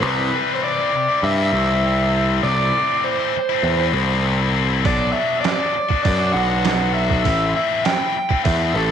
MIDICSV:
0, 0, Header, 1, 6, 480
1, 0, Start_track
1, 0, Tempo, 601202
1, 22, Time_signature, 4, 2, 24, 8
1, 7117, End_track
2, 0, Start_track
2, 0, Title_t, "Overdriven electric guitar"
2, 0, Program_c, 0, 29
2, 15, Note_on_c, 0, 71, 81
2, 434, Note_off_c, 0, 71, 0
2, 437, Note_on_c, 0, 72, 69
2, 498, Note_off_c, 0, 72, 0
2, 510, Note_on_c, 0, 74, 85
2, 955, Note_off_c, 0, 74, 0
2, 991, Note_on_c, 0, 76, 90
2, 1941, Note_off_c, 0, 76, 0
2, 1945, Note_on_c, 0, 74, 86
2, 2429, Note_on_c, 0, 72, 69
2, 2439, Note_off_c, 0, 74, 0
2, 3115, Note_off_c, 0, 72, 0
2, 3878, Note_on_c, 0, 74, 90
2, 4088, Note_off_c, 0, 74, 0
2, 4091, Note_on_c, 0, 76, 79
2, 4316, Note_off_c, 0, 76, 0
2, 4320, Note_on_c, 0, 74, 90
2, 4809, Note_off_c, 0, 74, 0
2, 4819, Note_on_c, 0, 74, 84
2, 5053, Note_off_c, 0, 74, 0
2, 5056, Note_on_c, 0, 78, 107
2, 5540, Note_off_c, 0, 78, 0
2, 5543, Note_on_c, 0, 76, 97
2, 5992, Note_off_c, 0, 76, 0
2, 6040, Note_on_c, 0, 76, 87
2, 6256, Note_off_c, 0, 76, 0
2, 6276, Note_on_c, 0, 79, 99
2, 6718, Note_off_c, 0, 79, 0
2, 6742, Note_on_c, 0, 76, 94
2, 6966, Note_off_c, 0, 76, 0
2, 6991, Note_on_c, 0, 69, 88
2, 7117, Note_off_c, 0, 69, 0
2, 7117, End_track
3, 0, Start_track
3, 0, Title_t, "Distorted electric guitar"
3, 0, Program_c, 1, 30
3, 24, Note_on_c, 1, 48, 83
3, 31, Note_on_c, 1, 52, 87
3, 38, Note_on_c, 1, 55, 90
3, 46, Note_on_c, 1, 60, 92
3, 53, Note_on_c, 1, 64, 83
3, 255, Note_off_c, 1, 52, 0
3, 259, Note_on_c, 1, 52, 70
3, 267, Note_off_c, 1, 55, 0
3, 270, Note_on_c, 1, 55, 71
3, 276, Note_off_c, 1, 60, 0
3, 279, Note_on_c, 1, 60, 77
3, 283, Note_off_c, 1, 64, 0
3, 287, Note_on_c, 1, 64, 86
3, 623, Note_off_c, 1, 64, 0
3, 626, Note_on_c, 1, 64, 74
3, 640, Note_off_c, 1, 60, 0
3, 643, Note_on_c, 1, 60, 70
3, 651, Note_off_c, 1, 55, 0
3, 654, Note_on_c, 1, 55, 65
3, 751, Note_off_c, 1, 52, 0
3, 754, Note_off_c, 1, 55, 0
3, 757, Note_off_c, 1, 60, 0
3, 760, Note_off_c, 1, 64, 0
3, 864, Note_on_c, 1, 64, 67
3, 877, Note_on_c, 1, 60, 68
3, 892, Note_on_c, 1, 55, 56
3, 1102, Note_off_c, 1, 64, 0
3, 1111, Note_on_c, 1, 64, 70
3, 1116, Note_off_c, 1, 60, 0
3, 1126, Note_off_c, 1, 55, 0
3, 1126, Note_on_c, 1, 60, 65
3, 1136, Note_on_c, 1, 55, 55
3, 1234, Note_on_c, 1, 52, 58
3, 1236, Note_off_c, 1, 55, 0
3, 1244, Note_off_c, 1, 60, 0
3, 1246, Note_on_c, 1, 55, 60
3, 1253, Note_off_c, 1, 64, 0
3, 1254, Note_on_c, 1, 60, 60
3, 1262, Note_on_c, 1, 64, 75
3, 1465, Note_off_c, 1, 48, 0
3, 1468, Note_off_c, 1, 52, 0
3, 1468, Note_on_c, 1, 48, 93
3, 1474, Note_off_c, 1, 55, 0
3, 1477, Note_on_c, 1, 52, 78
3, 1484, Note_off_c, 1, 60, 0
3, 1484, Note_on_c, 1, 55, 81
3, 1488, Note_off_c, 1, 64, 0
3, 1493, Note_on_c, 1, 60, 90
3, 1497, Note_on_c, 1, 64, 78
3, 1582, Note_off_c, 1, 64, 0
3, 1592, Note_on_c, 1, 64, 59
3, 1594, Note_off_c, 1, 60, 0
3, 1604, Note_on_c, 1, 60, 58
3, 1607, Note_off_c, 1, 55, 0
3, 1617, Note_on_c, 1, 55, 53
3, 1703, Note_off_c, 1, 52, 0
3, 1713, Note_on_c, 1, 52, 69
3, 1714, Note_off_c, 1, 55, 0
3, 1724, Note_on_c, 1, 55, 75
3, 1725, Note_off_c, 1, 60, 0
3, 1733, Note_off_c, 1, 64, 0
3, 1735, Note_on_c, 1, 60, 85
3, 1743, Note_on_c, 1, 64, 81
3, 1820, Note_off_c, 1, 64, 0
3, 1826, Note_off_c, 1, 48, 0
3, 1829, Note_on_c, 1, 64, 61
3, 1832, Note_off_c, 1, 60, 0
3, 1841, Note_on_c, 1, 60, 63
3, 1848, Note_off_c, 1, 55, 0
3, 1858, Note_on_c, 1, 55, 54
3, 1932, Note_off_c, 1, 64, 0
3, 1934, Note_off_c, 1, 52, 0
3, 1938, Note_off_c, 1, 60, 0
3, 1946, Note_off_c, 1, 55, 0
3, 1952, Note_on_c, 1, 48, 74
3, 1963, Note_on_c, 1, 52, 82
3, 1969, Note_on_c, 1, 57, 83
3, 1973, Note_on_c, 1, 60, 79
3, 1975, Note_on_c, 1, 64, 87
3, 2183, Note_off_c, 1, 52, 0
3, 2193, Note_on_c, 1, 52, 65
3, 2198, Note_off_c, 1, 57, 0
3, 2201, Note_on_c, 1, 57, 79
3, 2205, Note_off_c, 1, 60, 0
3, 2212, Note_off_c, 1, 64, 0
3, 2214, Note_on_c, 1, 60, 76
3, 2222, Note_on_c, 1, 64, 77
3, 2428, Note_off_c, 1, 48, 0
3, 2537, Note_off_c, 1, 64, 0
3, 2547, Note_on_c, 1, 64, 70
3, 2553, Note_off_c, 1, 60, 0
3, 2563, Note_on_c, 1, 60, 66
3, 2571, Note_off_c, 1, 57, 0
3, 2574, Note_on_c, 1, 57, 58
3, 2674, Note_off_c, 1, 52, 0
3, 2678, Note_off_c, 1, 60, 0
3, 2678, Note_off_c, 1, 64, 0
3, 2682, Note_off_c, 1, 57, 0
3, 2789, Note_on_c, 1, 64, 66
3, 2807, Note_on_c, 1, 60, 64
3, 2819, Note_on_c, 1, 57, 58
3, 3025, Note_off_c, 1, 64, 0
3, 3035, Note_on_c, 1, 64, 70
3, 3038, Note_off_c, 1, 60, 0
3, 3048, Note_on_c, 1, 60, 62
3, 3055, Note_off_c, 1, 57, 0
3, 3059, Note_on_c, 1, 57, 57
3, 3147, Note_on_c, 1, 52, 56
3, 3155, Note_off_c, 1, 57, 0
3, 3157, Note_off_c, 1, 60, 0
3, 3158, Note_on_c, 1, 57, 70
3, 3162, Note_off_c, 1, 64, 0
3, 3167, Note_on_c, 1, 60, 66
3, 3171, Note_on_c, 1, 64, 64
3, 3382, Note_off_c, 1, 52, 0
3, 3385, Note_on_c, 1, 48, 85
3, 3391, Note_on_c, 1, 52, 75
3, 3399, Note_off_c, 1, 57, 0
3, 3399, Note_off_c, 1, 60, 0
3, 3401, Note_off_c, 1, 64, 0
3, 3402, Note_on_c, 1, 57, 89
3, 3409, Note_on_c, 1, 60, 82
3, 3411, Note_on_c, 1, 64, 92
3, 3495, Note_off_c, 1, 64, 0
3, 3504, Note_on_c, 1, 64, 64
3, 3510, Note_off_c, 1, 60, 0
3, 3519, Note_on_c, 1, 60, 56
3, 3528, Note_off_c, 1, 57, 0
3, 3531, Note_on_c, 1, 57, 49
3, 3612, Note_off_c, 1, 52, 0
3, 3622, Note_on_c, 1, 52, 70
3, 3628, Note_off_c, 1, 57, 0
3, 3629, Note_off_c, 1, 60, 0
3, 3631, Note_on_c, 1, 57, 73
3, 3639, Note_on_c, 1, 60, 77
3, 3641, Note_off_c, 1, 64, 0
3, 3651, Note_on_c, 1, 64, 71
3, 3729, Note_off_c, 1, 64, 0
3, 3739, Note_on_c, 1, 64, 62
3, 3742, Note_off_c, 1, 60, 0
3, 3745, Note_off_c, 1, 48, 0
3, 3751, Note_on_c, 1, 60, 61
3, 3762, Note_off_c, 1, 57, 0
3, 3766, Note_on_c, 1, 57, 52
3, 3847, Note_off_c, 1, 64, 0
3, 3849, Note_off_c, 1, 52, 0
3, 3853, Note_off_c, 1, 60, 0
3, 3871, Note_on_c, 1, 47, 89
3, 3877, Note_on_c, 1, 54, 76
3, 3884, Note_off_c, 1, 57, 0
3, 3887, Note_on_c, 1, 59, 86
3, 3888, Note_on_c, 1, 62, 85
3, 3894, Note_on_c, 1, 66, 91
3, 4093, Note_off_c, 1, 54, 0
3, 4103, Note_on_c, 1, 54, 67
3, 4105, Note_off_c, 1, 59, 0
3, 4112, Note_off_c, 1, 62, 0
3, 4114, Note_on_c, 1, 59, 71
3, 4118, Note_off_c, 1, 66, 0
3, 4121, Note_on_c, 1, 62, 75
3, 4128, Note_on_c, 1, 66, 70
3, 4348, Note_off_c, 1, 47, 0
3, 4450, Note_off_c, 1, 66, 0
3, 4460, Note_on_c, 1, 66, 73
3, 4468, Note_off_c, 1, 62, 0
3, 4477, Note_on_c, 1, 62, 65
3, 4478, Note_off_c, 1, 59, 0
3, 4488, Note_on_c, 1, 59, 58
3, 4585, Note_off_c, 1, 59, 0
3, 4586, Note_off_c, 1, 54, 0
3, 4588, Note_off_c, 1, 62, 0
3, 4592, Note_off_c, 1, 66, 0
3, 4701, Note_on_c, 1, 66, 62
3, 4717, Note_on_c, 1, 62, 65
3, 4732, Note_on_c, 1, 59, 60
3, 4930, Note_off_c, 1, 66, 0
3, 4940, Note_on_c, 1, 66, 78
3, 4946, Note_off_c, 1, 62, 0
3, 4956, Note_on_c, 1, 62, 65
3, 4958, Note_off_c, 1, 59, 0
3, 4967, Note_on_c, 1, 59, 57
3, 5057, Note_on_c, 1, 54, 60
3, 5058, Note_off_c, 1, 59, 0
3, 5067, Note_off_c, 1, 62, 0
3, 5068, Note_on_c, 1, 59, 65
3, 5076, Note_off_c, 1, 66, 0
3, 5077, Note_on_c, 1, 62, 68
3, 5085, Note_on_c, 1, 66, 63
3, 5295, Note_on_c, 1, 47, 78
3, 5298, Note_off_c, 1, 54, 0
3, 5304, Note_off_c, 1, 59, 0
3, 5308, Note_off_c, 1, 62, 0
3, 5308, Note_on_c, 1, 54, 86
3, 5313, Note_on_c, 1, 59, 83
3, 5314, Note_off_c, 1, 66, 0
3, 5318, Note_on_c, 1, 62, 85
3, 5323, Note_on_c, 1, 66, 90
3, 5414, Note_off_c, 1, 66, 0
3, 5424, Note_on_c, 1, 66, 66
3, 5430, Note_off_c, 1, 62, 0
3, 5439, Note_on_c, 1, 62, 61
3, 5442, Note_off_c, 1, 59, 0
3, 5452, Note_on_c, 1, 59, 52
3, 5532, Note_off_c, 1, 54, 0
3, 5541, Note_on_c, 1, 54, 68
3, 5546, Note_off_c, 1, 59, 0
3, 5554, Note_off_c, 1, 62, 0
3, 5556, Note_on_c, 1, 59, 73
3, 5560, Note_off_c, 1, 66, 0
3, 5564, Note_on_c, 1, 62, 77
3, 5570, Note_on_c, 1, 66, 85
3, 5658, Note_off_c, 1, 66, 0
3, 5659, Note_off_c, 1, 47, 0
3, 5667, Note_on_c, 1, 66, 65
3, 5670, Note_off_c, 1, 62, 0
3, 5680, Note_on_c, 1, 62, 66
3, 5685, Note_off_c, 1, 59, 0
3, 5694, Note_on_c, 1, 59, 54
3, 5768, Note_off_c, 1, 54, 0
3, 5771, Note_off_c, 1, 66, 0
3, 5775, Note_on_c, 1, 45, 85
3, 5777, Note_off_c, 1, 62, 0
3, 5785, Note_off_c, 1, 59, 0
3, 5787, Note_on_c, 1, 52, 74
3, 5790, Note_on_c, 1, 57, 82
3, 5798, Note_on_c, 1, 60, 87
3, 5807, Note_on_c, 1, 64, 92
3, 6014, Note_off_c, 1, 52, 0
3, 6017, Note_on_c, 1, 52, 66
3, 6020, Note_off_c, 1, 57, 0
3, 6030, Note_on_c, 1, 57, 66
3, 6035, Note_off_c, 1, 60, 0
3, 6038, Note_on_c, 1, 60, 75
3, 6044, Note_off_c, 1, 64, 0
3, 6047, Note_on_c, 1, 64, 70
3, 6259, Note_off_c, 1, 45, 0
3, 6382, Note_off_c, 1, 64, 0
3, 6385, Note_on_c, 1, 64, 78
3, 6395, Note_off_c, 1, 60, 0
3, 6398, Note_on_c, 1, 60, 59
3, 6402, Note_off_c, 1, 57, 0
3, 6411, Note_on_c, 1, 57, 58
3, 6501, Note_off_c, 1, 57, 0
3, 6507, Note_off_c, 1, 52, 0
3, 6511, Note_off_c, 1, 60, 0
3, 6512, Note_off_c, 1, 64, 0
3, 6620, Note_on_c, 1, 64, 65
3, 6635, Note_on_c, 1, 60, 65
3, 6647, Note_on_c, 1, 57, 55
3, 6864, Note_off_c, 1, 64, 0
3, 6868, Note_on_c, 1, 64, 78
3, 6877, Note_off_c, 1, 60, 0
3, 6880, Note_on_c, 1, 60, 67
3, 6884, Note_off_c, 1, 57, 0
3, 6893, Note_on_c, 1, 57, 58
3, 6977, Note_on_c, 1, 52, 64
3, 6981, Note_off_c, 1, 57, 0
3, 6991, Note_on_c, 1, 57, 61
3, 6995, Note_off_c, 1, 60, 0
3, 6998, Note_on_c, 1, 60, 66
3, 7003, Note_off_c, 1, 64, 0
3, 7006, Note_on_c, 1, 64, 64
3, 7117, Note_off_c, 1, 52, 0
3, 7117, Note_off_c, 1, 57, 0
3, 7117, Note_off_c, 1, 60, 0
3, 7117, Note_off_c, 1, 64, 0
3, 7117, End_track
4, 0, Start_track
4, 0, Title_t, "Picked electric bass"
4, 0, Program_c, 2, 34
4, 18, Note_on_c, 2, 36, 99
4, 240, Note_off_c, 2, 36, 0
4, 983, Note_on_c, 2, 43, 85
4, 1204, Note_off_c, 2, 43, 0
4, 1220, Note_on_c, 2, 36, 102
4, 1910, Note_off_c, 2, 36, 0
4, 1942, Note_on_c, 2, 36, 101
4, 2163, Note_off_c, 2, 36, 0
4, 2900, Note_on_c, 2, 40, 74
4, 3122, Note_off_c, 2, 40, 0
4, 3137, Note_on_c, 2, 36, 94
4, 3870, Note_off_c, 2, 36, 0
4, 3870, Note_on_c, 2, 35, 94
4, 4087, Note_off_c, 2, 35, 0
4, 4834, Note_on_c, 2, 42, 75
4, 5050, Note_off_c, 2, 42, 0
4, 5064, Note_on_c, 2, 35, 97
4, 5792, Note_off_c, 2, 35, 0
4, 5792, Note_on_c, 2, 33, 91
4, 6009, Note_off_c, 2, 33, 0
4, 6750, Note_on_c, 2, 40, 82
4, 6967, Note_off_c, 2, 40, 0
4, 6980, Note_on_c, 2, 33, 101
4, 7117, Note_off_c, 2, 33, 0
4, 7117, End_track
5, 0, Start_track
5, 0, Title_t, "Muted distorted electric guitar strokes"
5, 754, Note_on_c, 9, 29, 46
5, 834, Note_off_c, 9, 29, 0
5, 2684, Note_on_c, 9, 29, 43
5, 2763, Note_off_c, 9, 29, 0
5, 4594, Note_on_c, 9, 29, 47
5, 4674, Note_off_c, 9, 29, 0
5, 6510, Note_on_c, 9, 29, 38
5, 6590, Note_off_c, 9, 29, 0
5, 7117, End_track
6, 0, Start_track
6, 0, Title_t, "Drums"
6, 3873, Note_on_c, 9, 36, 94
6, 3873, Note_on_c, 9, 46, 44
6, 3953, Note_off_c, 9, 36, 0
6, 3953, Note_off_c, 9, 46, 0
6, 4345, Note_on_c, 9, 46, 42
6, 4352, Note_on_c, 9, 38, 111
6, 4425, Note_off_c, 9, 46, 0
6, 4432, Note_off_c, 9, 38, 0
6, 4712, Note_on_c, 9, 36, 82
6, 4792, Note_off_c, 9, 36, 0
6, 4830, Note_on_c, 9, 46, 50
6, 4831, Note_on_c, 9, 36, 94
6, 4910, Note_off_c, 9, 46, 0
6, 4911, Note_off_c, 9, 36, 0
6, 5307, Note_on_c, 9, 46, 50
6, 5313, Note_on_c, 9, 38, 105
6, 5386, Note_off_c, 9, 46, 0
6, 5393, Note_off_c, 9, 38, 0
6, 5670, Note_on_c, 9, 36, 83
6, 5750, Note_off_c, 9, 36, 0
6, 5791, Note_on_c, 9, 36, 80
6, 5791, Note_on_c, 9, 46, 49
6, 5871, Note_off_c, 9, 36, 0
6, 5871, Note_off_c, 9, 46, 0
6, 6268, Note_on_c, 9, 46, 52
6, 6275, Note_on_c, 9, 38, 100
6, 6348, Note_off_c, 9, 46, 0
6, 6355, Note_off_c, 9, 38, 0
6, 6630, Note_on_c, 9, 36, 81
6, 6710, Note_off_c, 9, 36, 0
6, 6747, Note_on_c, 9, 46, 51
6, 6750, Note_on_c, 9, 36, 90
6, 6827, Note_off_c, 9, 46, 0
6, 6830, Note_off_c, 9, 36, 0
6, 7117, End_track
0, 0, End_of_file